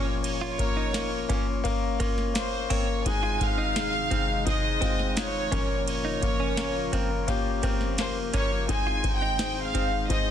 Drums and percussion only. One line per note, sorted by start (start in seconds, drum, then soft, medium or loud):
0.24 ride medium
0.59 kick loud
0.59 ride medium
0.94 snare loud
0.94 ride medium
1.29 kick medium
1.29 ride medium
1.65 kick medium
1.65 ride medium
2.00 kick loud
2.00 ride medium
2.18 snare soft
2.35 snare loud
2.35 ride medium
2.70 kick loud
2.70 open hi-hat medium
2.70 ride medium
3.06 kick loud
3.06 ride medium
3.41 kick medium
3.41 ride medium
3.76 snare loud
3.76 ride medium
4.11 kick medium
4.11 ride soft
4.46 kick loud
4.46 ride medium
4.82 kick medium
4.82 ride medium
4.99 snare soft
5.17 snare loud
5.17 ride medium
5.52 kick loud
5.52 ride medium
5.88 ride medium
6.22 kick loud
6.22 ride medium
6.57 snare loud
6.57 ride medium
6.93 kick medium
6.93 ride medium
7.28 kick medium
7.28 ride medium
7.63 kick medium
7.63 ride medium
7.81 snare soft
7.98 snare loud
7.98 ride medium
8.34 kick loud
8.34 ride medium
8.69 kick loud
8.69 ride medium
9.04 kick loud
9.04 ride medium
9.39 snare loud
9.39 ride medium
9.75 kick medium
9.75 ride medium
10.10 kick medium
10.10 ride medium